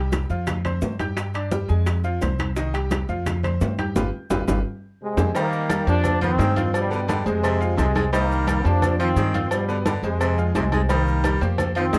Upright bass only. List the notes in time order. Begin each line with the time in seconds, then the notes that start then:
Already playing: C2
0.30 F2
0.82 G2
1.70 F2
2.22 C2
3.09 F2
3.61 G2
3.96 G1
4.30 G1
4.48 G1
5.17 F2
5.87 F2
6.39 G2
7.26 F2
7.78 C2
8.65 F2
9.16 G2
10.03 F2
10.55 C2
11.41 F2
11.94 G2